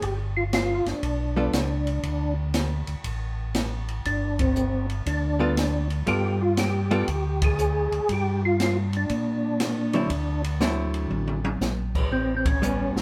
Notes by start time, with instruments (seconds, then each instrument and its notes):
0.02 tonewheel organ G1 G4, kick, ride
0.37 tonewheel organ F4
0.53 tonewheel organ F4, snare, hi-hat pedal, ride
0.85 tonewheel organ G1 D4, snare, ride
1.03 tonewheel organ B1, kick, ride
1.36 hollow-body jazz guitar G3 B3 F4 A4
1.53 tonewheel organ C#2, snare, hi-hat pedal, ride
1.87 ride
2.03 tonewheel organ D2, kick, ride
2.54 snare, hi-hat pedal, ride
2.87 tonewheel organ D2, ride
3.04 tonewheel organ A1, kick, ride
3.54 snare, hi-hat pedal, ride
3.88 ride
4.05 tonewheel organ G1 D4, kick, ride
4.39 tonewheel organ C4, kick, ride
4.56 hi-hat pedal
4.90 ride
5.06 tonewheel organ D2 D4, kick, ride
5.39 hollow-body jazz guitar G3 B3 F4 A4, tonewheel organ D4
5.57 snare, hi-hat pedal, ride
5.90 ride
6.07 tonewheel organ G2 G4, hollow-body jazz guitar G3 B3 F4 A4, kick, ride
6.42 tonewheel organ F4
6.57 tonewheel organ G4, snare, hi-hat pedal, ride
6.91 hollow-body jazz guitar G3 B3 F4 A4, tonewheel organ G4, ride
7.08 tonewheel organ D2, kick, ride
7.42 tonewheel organ G#4, kick, ride
7.58 hi-hat pedal
7.92 tonewheel organ D2, ride
8.09 tonewheel organ G2 G4, kick, ride
8.45 tonewheel organ F4
8.60 tonewheel organ F4, snare, hi-hat pedal, ride
8.93 tonewheel organ D4, ride
9.09 tonewheel organ A#2, kick, ride
9.60 snare, hi-hat pedal, ride
9.93 hollow-body jazz guitar D3 F#3 C4 E4, ride
10.10 tonewheel organ D2, kick, ride
10.44 ride
10.60 hollow-body jazz guitar D3 F#3 C4 E4, snare, hi-hat pedal
10.94 ride
11.10 tonewheel organ A1, high tom
11.27 high tom
11.44 high tom
11.60 tonewheel organ A#1, snare, hi-hat pedal
11.95 kick, crash
12.11 tonewheel organ A1 C4, kick
12.37 tonewheel organ C4
12.45 tonewheel organ C#4, kick, ride
12.62 hollow-body jazz guitar G3 B3 C#4, hi-hat pedal
12.95 tonewheel organ A1, snare